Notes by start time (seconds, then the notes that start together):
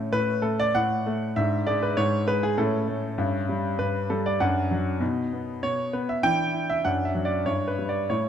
Already playing: A2 A3 C#4 E4
0.12 A2 B4
0.42 A3 A4
0.60 D5
0.75 A2 F#5
1.06 A3
1.36 G#2 D4 E4 E5
1.67 G#3 D5
1.83 B4
1.97 G#2 C#5
2.28 G#3 B4
2.43 G#4
2.58 A2 C#4 E4 A4
2.88 A3
3.18 G2 C#4 E4
3.49 G3
3.79 G2 B4
4.10 G3 A4
4.26 D5
4.40 F#2 D4 F#4 F#5
4.71 F#3
5.00 B2 D#4 F#4
5.33 B3
5.63 B2 C#5
5.93 B3 B4
6.09 E5
6.23 E3 D4 E4 G5
6.53 E4
6.70 E5
6.84 F#2 D4 F#5
7.05 E5
7.15 F#3
7.25 D5
7.46 G2 D4 E4 C#5
7.68 B4
7.79 G3
7.89 D5
8.10 A2 A3 E4 C#5